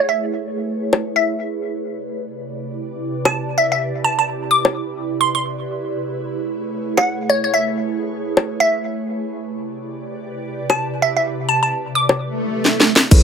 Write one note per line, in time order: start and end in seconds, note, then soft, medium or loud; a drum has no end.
0.00 1.68 A3 medium
0.00 1.68 E4 medium
0.00 1.68 G#4 medium
0.00 9.12 B4 medium
0.00 1.68 C#5 medium
0.09 0.28 E5 medium
0.93 high bongo medium
1.16 1.48 E5 medium
1.72 5.63 C3 medium
1.72 13.07 E4 medium
1.72 5.63 G4 medium
1.72 5.63 D5 medium
3.25 3.43 A5 medium
3.25 high bongo medium
3.58 3.67 E5 medium
3.72 3.78 E5 medium
4.04 4.13 A5 medium
4.19 4.24 A5 medium
4.51 4.70 D6 medium
4.65 high bongo medium
5.21 5.30 C6 medium
5.35 5.41 C6 medium
5.67 9.12 A3 medium
5.67 9.12 G#4 medium
5.67 9.13 C#5 medium
6.97 7.15 F#5 medium
6.97 high bongo medium
7.30 7.39 C#5 medium
7.44 7.50 C#5 medium
7.54 7.73 E5 medium
8.37 high bongo medium
8.60 8.93 E5 medium
9.16 13.07 C3 medium
9.16 13.07 G4 medium
9.16 13.07 B4 medium
9.16 13.07 D5 medium
10.70 10.87 A5 medium
10.70 high bongo medium
11.02 11.11 E5 medium
11.17 11.22 E5 medium
11.49 11.58 A5 medium
11.63 11.69 A5 medium
11.95 12.15 D6 medium
12.09 high bongo medium
12.18 swell medium
12.65 snare medium
12.80 snare medium
12.96 snare medium
13.11 13.23 A1 loud
13.11 13.23 E4 medium
13.11 13.23 G#4 medium
13.11 13.23 A4 medium
13.11 13.23 B4 medium
13.11 13.23 C#5 medium
13.11 kick loud
13.11 crash loud
13.11 impact medium
13.11 shaker medium